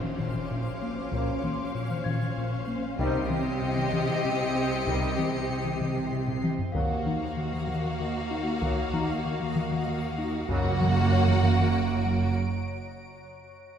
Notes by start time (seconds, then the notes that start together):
Already playing: A#1 A#2 C#4 D#4 C5 D#5 F5 C6 D6, impact
0.03 taiko mid
0.19 A#2, taiko mid
0.34 taiko mid
0.51 A#2
0.82 A#3
1.12 A#2 C#3 A#3 F4 C5, taiko
1.44 A#3 C6, taiko mid
1.75 A#2
1.90 taiko mid
1.96 C#6
2.04 A#2 G#6, taiko mid
2.22 taiko mid
2.38 A#2
2.67 A#3
2.98 C2 C3 D#3 G3 C4 D#4 G4 C5 D#5 C7, taiko
3.30 C4, taiko mid
3.62 C3 C#7
3.77 taiko mid
3.93 C3, taiko mid
4.09 taiko mid
4.25 C3
4.55 C4
4.87 C3 D#3 G3 C4 D#4, taiko
5.18 C4, taiko mid
5.50 C3
5.65 taiko mid
5.70 C7
5.81 C3, taiko mid
5.97 taiko mid
6.13 C3
6.28 taiko low-mid
6.43 C4, taiko mid
6.59 taiko low
6.72 D#2 D#3 F#3 A#3 F#4 D#5 F5 A#5, taiko
7.06 D#4, taiko mid
7.37 D#3
7.53 taiko mid
7.67 D#3, taiko mid
7.84 taiko mid
8.00 D#3
8.31 D#4
8.62 D#3 F#3 A#3 F#4, taiko
8.93 D#4 A#5, taiko mid
9.25 D#3
9.40 taiko mid
9.56 D#3, taiko mid
9.71 taiko mid
9.88 D#3
10.18 D#4
10.49 F#1 F#2 C#3 F#3 A#3 F#4 C#5 F#5 A#5, taiko
10.80 F#3, taiko mid
11.11 F#2 C#5 D7
11.27 taiko mid
11.43 F#2, taiko mid
11.59 taiko mid
11.74 F#2
12.06 F#3